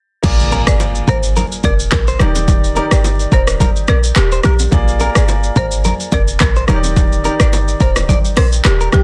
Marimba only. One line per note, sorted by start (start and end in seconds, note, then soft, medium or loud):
0.68 0.78 D5 medium
1.09 1.22 C5 medium
1.65 1.78 A#4 medium
1.93 2.33 A#4 medium
2.93 3.03 D5 medium
3.34 3.46 C5 medium
3.90 4.02 A#4 medium
4.18 4.30 G4 medium
4.45 4.58 G4 medium
5.17 5.27 D5 medium
5.58 5.70 C5 medium
6.14 6.26 A#4 medium
6.42 6.82 A#4 medium
7.41 7.51 D5 medium
7.82 7.94 C5 medium
8.38 8.51 A#4 medium
8.66 8.79 G4 medium
8.94 9.03 G4 medium